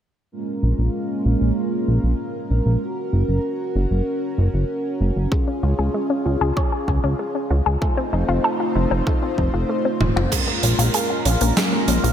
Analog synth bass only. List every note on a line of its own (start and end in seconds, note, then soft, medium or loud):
0.63 0.74 A#1 medium
0.79 0.90 A#1 medium
1.25 1.36 A#1 medium
1.41 1.52 A#1 medium
1.88 1.99 A#1 medium
2.04 2.15 A#1 medium
2.51 2.62 A#1 medium
2.66 2.77 A#1 medium
3.13 3.24 F#1 medium
3.29 3.40 F#1 medium
3.75 3.86 F#1 medium
3.91 4.02 F#1 medium
4.38 4.49 F#1 medium
4.54 4.65 F#1 medium
5.01 5.12 F#1 medium
5.16 5.27 F#1 medium
5.63 5.74 C#2 medium
5.79 5.90 C#2 medium
6.26 6.37 C#2 medium
6.41 6.52 C#2 medium
6.88 6.99 C#2 medium
7.04 7.15 C#2 medium
7.51 7.62 C#2 medium
7.66 7.77 C#2 medium
8.13 8.24 F1 medium
8.29 8.40 F1 medium
8.76 8.87 F1 medium
8.91 9.02 F1 medium
9.38 9.49 F1 medium
9.54 9.65 F1 medium
10.00 10.11 D#1 medium
10.16 10.27 F1 medium
10.63 10.74 A#1 medium
10.79 10.90 A#1 medium
11.26 11.37 A#1 medium
11.41 11.52 A#1 medium
11.88 11.99 A#1 medium
12.04 12.13 A#1 medium